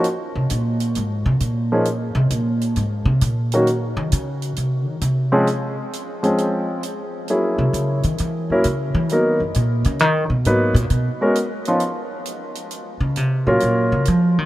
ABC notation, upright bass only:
X:1
M:4/4
L:1/8
Q:"Swing" 1/4=133
K:Db
V:1 name="Upright bass" clef=bass
z C, B,,2 A,, C, B,,2- | B,, C, B,,2 A,, C, B,,2- | B,, E, D,2 C, E, C,2- | C, z6 z |
z C, D, E, _F, A,, D, F, | E, G,, B,, D, E, _C, A,, B,, | _C, z6 z | z D, C, =A,, B,, D, F, E, |]